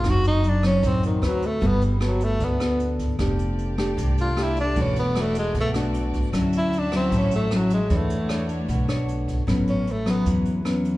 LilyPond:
<<
  \new Staff \with { instrumentName = "String section" } { \time 4/4 \key a \major \tempo 4 = 153 << { r1 | r1 | <a d''>1~ | <a d''>1 |
<cis' e''>1 | <a d' cis''>1 | r1 | } \\ { r1 | r1 | g'1 | fis'1 |
fis'1 | fis'1 | r1 | } >> }
  \new Staff \with { instrumentName = "Nylon-string guitar" } { \time 4/4 \key a \major << { <fis c' dis'>4 r8 <fis c' dis'>4. <c' fis' b'>8 r8 | <b fis' a'>4 <b fis' a'>4. <b fis' a'>4. | <a d' g'>4. <a d' g'>4. <a d' g'>8 r8 | <a d' fis'>8 r8 <a d' fis'>4 r8 <a d' fis'>4. |
<fis cis' e'>4. <fis cis' e'>4. <fis cis' e'>8 r8 | <d' a' cis''>8 r8 <d' a' cis''>4 r8 <d' a' cis''>4. | <fis b cis'>4 r8 <fis b cis'>4. <fis b cis'>4 | } \\ { fis,2 fis,4 r4 | g2 d2 | f2 c2 | e2 b,2 |
d2 a,2 | e2 b,2 | a,2 e2 | } >> }
  \new Staff \with { instrumentName = "Tenor saxophone" } { \time 4/4 \key a \major fis'8 dis'8 d'8 cis'8 c'8 dis8 fis8 a8 | b8 d8 fis8 a8 b4. r8 | r2 r8 f'8 e'8 d'8 | cis'8 b8 a8 gis8 a8 r4. |
r8 e'8 d'8 c'8 cis'8 a8 fis8 gis8 | a4. r2 r8 | r8 cis'8 a8 b8 r2 | }
  \new Staff \with { instrumentName = "Upright bass" } { \clef bass \time 4/4 \key a \major fis,,2 a,,4 d,4 | g,,2 d,2 | f,,2 c,2 | e,,2 b,,2 |
d,2 a,,2 | e,2 b,,2 | a,,2 e,2 | }
  \new DrumStaff \with { instrumentName = "Drums" } \drummode { \time 4/4 <hh bd ss>8 hh8 hh8 <hh ss>8 <hh bd>8 hh8 <hh ss>8 hh8 | <hh bd>8 hh8 <hh ss>8 hh8 <hh bd>8 <hh ss>8 hh8 <hh bd>8 | <hh bd ss>8 hh8 hh8 <hh ss>8 <hh bd>8 hh8 <hh ss>8 hh8 | <hh bd>8 hh8 <hh ss>8 hh8 <hh bd>8 <hh ss>8 hh8 <hh bd>8 |
<hh bd ss>8 hh8 hh8 <hh ss>8 <hh bd>8 hh8 <hh ss>8 hh8 | <hh bd>8 hh8 <hh ss>8 hh8 <hh bd>8 <hh ss>8 hh8 <hh bd>8 | <hh bd ss>8 hh8 hh8 <hh ss>8 <hh bd>8 hh8 <hh ss>8 hh8 | }
>>